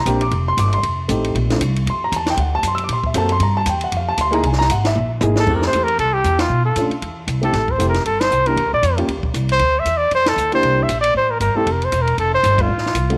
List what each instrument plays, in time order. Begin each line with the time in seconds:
Already playing: grand piano A#5
0.06 upright bass A#1, grand piano A#3 C4 D4 G4, kick, hi-hat pedal, ride
0.21 grand piano D6, ride
0.31 upright bass F1, kick, ride
0.48 grand piano C6
0.57 upright bass G1, grand piano D6, kick, hi-hat pedal, ride
0.73 grand piano C6, ride
0.83 upright bass F1, kick, ride
1.08 upright bass A1, grand piano A3 C4 D#4 G4, kick, hi-hat pedal, ride
1.24 ride
1.35 upright bass A#1, kick, ride
1.50 grand piano A3 C4 D4 F4, snare, ride
1.61 upright bass C2, kick, hi-hat pedal, ride
1.76 ride
1.86 upright bass F2, grand piano C6, kick, ride
2.04 grand piano A#5
2.12 upright bass E2, kick, hi-hat pedal, ride
2.16 grand piano A5
2.26 grand piano G5, snare, ride
2.37 upright bass D2, grand piano F#5, kick, ride
2.55 grand piano A5
2.63 upright bass F#2, kick, hi-hat pedal, ride
2.68 grand piano C6
2.75 grand piano E6, ride
2.84 grand piano D6
2.89 upright bass A#2, kick, ride
2.93 grand piano C6
3.04 grand piano E5, kick
3.14 upright bass F#2, grand piano A#3 C4 F#4 A4 A5, kick, hi-hat pedal, ride
3.29 grand piano C6, ride
3.40 upright bass G2, grand piano A#5, kick, ride
3.57 grand piano A5
3.66 upright bass E2, grand piano G5, kick, hi-hat pedal, ride
3.81 grand piano F#5, ride
3.92 upright bass F2, kick, ride
3.97 grand piano F5
4.09 grand piano A5
4.17 upright bass D2, grand piano C6, kick, hi-hat pedal, ride
4.31 grand piano A#3 D#4 E4 G#4 A#5, ride
4.43 upright bass C2, grand piano G#5, kick, ride
4.53 snare
4.59 grand piano A#5, snare
4.69 upright bass G#1, grand piano F#5, kick, hi-hat pedal, ride
4.85 grand piano E5, snare, ride
4.95 upright bass A#1, high tom
5.21 upright bass G#1, grand piano A#3 D#4 E4 G#4, hi-hat pedal, high tom
5.36 trumpet A4, snare
5.47 upright bass F2, grand piano A3 C4 E4 G4, kick, crash
5.55 trumpet A#4
5.62 snare
5.67 trumpet C5
5.73 upright bass E2, grand piano A3 C4 E4 G4, kick, hi-hat pedal, ride
5.84 trumpet A#4
5.88 ride
5.98 upright bass C2, trumpet A4, kick, ride
6.14 trumpet G4
6.24 upright bass E2, kick, hi-hat pedal, ride
6.39 trumpet F4, snare, ride
6.49 upright bass B2
6.66 trumpet A4
6.76 upright bass A2, grand piano A3 C#4 D4 F4, kick, hi-hat pedal, ride
6.90 muted upright bass stroke, ride
7.02 upright bass E2, kick, ride
7.28 upright bass C2, kick, hi-hat pedal, ride
7.42 grand piano A3 C4 E4 G4, trumpet A4, ride
7.53 upright bass A1, kick, snare, ride
7.68 trumpet C5, kick
7.78 upright bass F1, grand piano A3 C4 E4 G4, kick, hi-hat pedal, ride
7.89 trumpet A#4
7.94 snare, ride
8.05 upright bass G1, trumpet A4, kick, ride
8.21 trumpet C5, snare, ride
8.31 upright bass C2, hi-hat pedal
8.46 grand piano A#3 D4 E4 G4, trumpet A#4, ride
8.56 upright bass E2, kick, ride
8.66 upright bass D2
8.73 upright bass A#1, trumpet D5
8.83 upright bass F2, kick, hi-hat pedal, ride
8.97 grand piano A#3 C#4 F4 G4, ride
9.08 upright bass D#2, kick, ride
9.18 upright bass C#2
9.23 upright bass A#1, kick
9.34 upright bass C2, kick, hi-hat pedal, ride
9.49 trumpet C5, ride
9.59 upright bass D2, kick, ride
9.80 trumpet E5
9.85 upright bass E2, kick, hi-hat pedal, ride
9.97 trumpet D5
10.11 upright bass F2, trumpet C5, kick, ride
10.26 trumpet A4, snare, ride
10.36 upright bass D2, hi-hat pedal
10.52 grand piano A#3 D4 E4 G4, trumpet C5, ride
10.63 upright bass C2, kick, ride
10.83 trumpet E5
10.89 upright bass A#1, kick, hi-hat pedal, ride
11.01 trumpet D5, ride
11.15 upright bass A1, trumpet C5, kick
11.31 trumpet A#4
11.40 upright bass G1, trumpet A#4, kick, hi-hat pedal, ride
11.55 grand piano A3 C4 E4 G4, trumpet A4, muted upright bass stroke
11.66 upright bass F1, kick, ride
11.72 trumpet A#4
11.82 trumpet C5, ride
11.92 upright bass E1, kick, hi-hat pedal, ride
12.02 trumpet A#4
12.07 ride
12.18 upright bass F1, trumpet A4, kick, ride
12.34 trumpet C5
12.43 upright bass G1, kick, hi-hat pedal, ride
12.58 trumpet F4, kick, ride
12.68 upright bass A1
12.78 snare
12.86 snare
12.94 upright bass C2, kick, hi-hat pedal, ride
13.10 grand piano A3 C4 D#4 F#4, ride